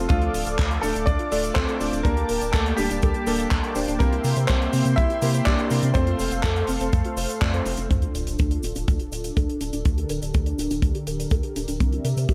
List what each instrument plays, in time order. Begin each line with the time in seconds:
Already playing: analog synth pad A4 F5
0.09 analog synth bass D2, grand piano F3 F4, electric grand piano A3 D4 F4 A4, synth arpeggio sound D4, analog synth pad D5 D6, kick, closed hi-hat, cabasa
0.21 synth arpeggio sound F4, closed hi-hat
0.34 analog synth bass D1, synth arpeggio sound D5, open hi-hat, cabasa
0.46 analog synth bass D1, synth arpeggio sound F5, closed hi-hat, cabasa
0.58 analog synth bass D2, synth arpeggio sound A4, kick, clap, closed hi-hat, cabasa
0.71 synth arpeggio sound F5, closed hi-hat
0.81 analog synth bass D1, grand piano A3 A4, synth arpeggio sound D4, open hi-hat, cabasa
0.95 analog synth bass D1, synth arpeggio sound D4, closed hi-hat, cabasa
1.06 analog synth bass D2, grand piano D4 D5, synth arpeggio sound A4, kick, closed hi-hat, cabasa
1.19 synth arpeggio sound F4, closed hi-hat
1.31 analog synth bass D1, electric grand piano A3 D4 F4 A4, synth arpeggio sound D5, open hi-hat, cabasa
1.44 synth arpeggio sound F5, closed hi-hat, cabasa
1.54 analog synth bass D2, grand piano C4 C5, synth arpeggio sound A4, kick, clap, closed hi-hat, cabasa
1.68 synth arpeggio sound A4, closed hi-hat
1.80 analog synth bass D1, electric grand piano A3 D4 F4 D5, synth arpeggio sound D4, open hi-hat, cabasa
1.93 analog synth bass D1, synth arpeggio sound D4, closed hi-hat, cabasa
2.03 analog synth bass D2, analog synth pad A#3 G5 A5, electric grand piano A#3 D4 G4 A5, grand piano A#3 A#4, synth arpeggio sound D4, kick, closed hi-hat, cabasa
2.17 synth arpeggio sound G4, closed hi-hat
2.29 analog synth bass D1, synth arpeggio sound A#4, open hi-hat, cabasa
2.41 analog synth bass D1, synth arpeggio sound D5, closed hi-hat, cabasa
2.52 analog synth bass D2, grand piano A3 A4, synth arpeggio sound A4, kick, clap, closed hi-hat, cabasa
2.66 synth arpeggio sound D5, closed hi-hat
2.77 analog synth bass D1, grand piano G3 G4, synth arpeggio sound D4, open hi-hat, cabasa
2.90 analog synth bass D1, synth arpeggio sound D4, closed hi-hat, cabasa
3.02 analog synth bass D2, synth arpeggio sound A4, kick, closed hi-hat, cabasa
3.14 synth arpeggio sound G4, closed hi-hat
3.27 analog synth bass D1, electric grand piano A#3 D4 G4 A4, synth arpeggio sound A#4, open hi-hat, cabasa
3.39 synth arpeggio sound D5, closed hi-hat, cabasa
3.51 analog synth bass D2, synth arpeggio sound A4, kick, clap, closed hi-hat, cabasa
3.63 synth arpeggio sound A4, closed hi-hat
3.75 analog synth bass D1, electric grand piano A#3 D4 G4 C5, synth arpeggio sound D4, open hi-hat, cabasa
3.88 analog synth bass D1, synth arpeggio sound D4, closed hi-hat, cabasa
3.99 analog synth bass C2, electric grand piano A#3 C4 E4 G4, grand piano A#3 A#4, synth arpeggio sound C4, analog synth pad E5 C6, kick, closed hi-hat, cabasa
4.12 synth arpeggio sound E4, closed hi-hat
4.24 analog synth bass C3, synth arpeggio sound A#4, open hi-hat, cabasa
4.36 analog synth bass C3, synth arpeggio sound C5, closed hi-hat, cabasa
4.47 analog synth bass C2, grand piano C4 C5, synth arpeggio sound G4, kick, clap, closed hi-hat, cabasa
4.61 synth arpeggio sound C5, closed hi-hat
4.73 analog synth bass C3, synth arpeggio sound C4, open hi-hat, cabasa
4.85 analog synth bass C3, synth arpeggio sound C4, closed hi-hat, cabasa
4.96 analog synth bass C2, grand piano E4 E5, synth arpeggio sound G4, kick, closed hi-hat, cabasa
5.10 synth arpeggio sound E4, closed hi-hat
5.22 analog synth bass C3, electric grand piano A#3 C4 E4 G4, synth arpeggio sound A#4, open hi-hat, cabasa
5.34 synth arpeggio sound C5, closed hi-hat, cabasa
5.45 analog synth bass C2, grand piano D4 D5, synth arpeggio sound G4, kick, clap, closed hi-hat, cabasa
5.58 synth arpeggio sound G4, closed hi-hat
5.70 analog synth bass C3, electric grand piano A#3 C4 E4 A#4, synth arpeggio sound C4, open hi-hat, cabasa
5.83 analog synth bass C3, synth arpeggio sound C4, closed hi-hat, cabasa
5.94 analog synth bass F2, electric grand piano A3 C4 F4 A4, synth arpeggio sound C4, grand piano C4 C5, analog synth pad A4 C5 F5, kick, closed hi-hat, cabasa
6.07 synth arpeggio sound F4, closed hi-hat
6.19 analog synth bass F1, synth arpeggio sound C5, open hi-hat, cabasa
6.31 analog synth bass F1, synth arpeggio sound F5, closed hi-hat, cabasa
6.42 analog synth bass F2, grand piano A3 A4, synth arpeggio sound A4, kick, clap, closed hi-hat, cabasa
6.56 synth arpeggio sound F5, closed hi-hat
6.67 analog synth bass F1, synth arpeggio sound C4, open hi-hat, cabasa
6.80 analog synth bass F1, synth arpeggio sound C4, closed hi-hat, cabasa
6.93 analog synth bass F2, synth arpeggio sound A4, kick, closed hi-hat, cabasa
7.05 synth arpeggio sound F4, closed hi-hat
7.17 analog synth bass F1, synth arpeggio sound C5, open hi-hat, cabasa
7.29 synth arpeggio sound F5, closed hi-hat, cabasa
7.41 analog synth bass F2, electric grand piano A3 C4 F4 D5, synth arpeggio sound A4, kick, clap, closed hi-hat, cabasa
7.54 electric grand piano A3 C4 F4 C5, synth arpeggio sound A4, closed hi-hat
7.65 analog synth bass F1, synth arpeggio sound C4, open hi-hat, cabasa
7.77 analog synth bass F1, synth arpeggio sound C4, closed hi-hat, cabasa
7.90 analog synth bass D2, analog synth pad D4 F4 A4, synth arpeggio sound D4, kick, closed hi-hat, sub drop, cabasa
8.02 synth arpeggio sound F4, closed hi-hat
8.15 analog synth bass D1, synth arpeggio sound D5, closed hi-hat, cabasa
8.27 analog synth bass D1, synth arpeggio sound F5, closed hi-hat, cabasa
8.39 analog synth bass D2, synth arpeggio sound A4, kick, closed hi-hat, cabasa
8.51 synth arpeggio sound F5, closed hi-hat
8.63 analog synth bass D1, synth arpeggio sound D4, closed hi-hat, cabasa
8.75 analog synth bass D1, synth arpeggio sound D4, closed hi-hat, cabasa
8.88 analog synth bass D2, synth arpeggio sound A4, kick, closed hi-hat, cabasa
8.99 synth arpeggio sound F4, closed hi-hat
9.12 analog synth bass D1, synth arpeggio sound D5, closed hi-hat, cabasa
9.24 synth arpeggio sound F5, closed hi-hat, cabasa
9.36 analog synth bass D2, synth arpeggio sound A4, kick, closed hi-hat, cabasa
9.49 synth arpeggio sound A4, closed hi-hat
9.61 analog synth bass D1, synth arpeggio sound D4, closed hi-hat, cabasa
9.73 analog synth bass D1, synth arpeggio sound D4, closed hi-hat, cabasa
9.85 analog synth bass D2, analog synth pad D3 G4 A#4, synth arpeggio sound D4, kick, closed hi-hat, cabasa
9.97 synth arpeggio sound G4, closed hi-hat
10.09 analog synth bass D1, synth arpeggio sound A#4, closed hi-hat, cabasa
10.22 analog synth bass D1, synth arpeggio sound D5, closed hi-hat, cabasa
10.34 analog synth bass D2, synth arpeggio sound A4, kick, closed hi-hat, cabasa
10.46 synth arpeggio sound D5, closed hi-hat
10.58 analog synth bass D1, synth arpeggio sound D4, closed hi-hat, cabasa
10.70 analog synth bass D1, synth arpeggio sound D4, closed hi-hat, cabasa
10.82 analog synth bass D2, synth arpeggio sound A4, kick, closed hi-hat, cabasa
10.95 synth arpeggio sound G4, closed hi-hat
11.07 analog synth bass D1, synth arpeggio sound A#4, closed hi-hat, cabasa
11.19 synth arpeggio sound D5, closed hi-hat, cabasa
11.31 analog synth bass D2, synth arpeggio sound A4, kick, closed hi-hat, cabasa
11.43 synth arpeggio sound A4, closed hi-hat
11.56 analog synth bass D1, synth arpeggio sound D4, closed hi-hat, cabasa
11.68 analog synth bass D1, synth arpeggio sound D4, closed hi-hat, cabasa
11.80 analog synth bass C2, synth arpeggio sound C4, analog synth pad C4 D5 E5, kick, closed hi-hat, cabasa
11.92 synth arpeggio sound E4, closed hi-hat
12.05 analog synth bass C3, synth arpeggio sound A#4, closed hi-hat, cabasa
12.17 analog synth bass C3, synth arpeggio sound C5, closed hi-hat, cabasa
12.29 analog synth bass C2, synth arpeggio sound G4, kick, closed hi-hat, cabasa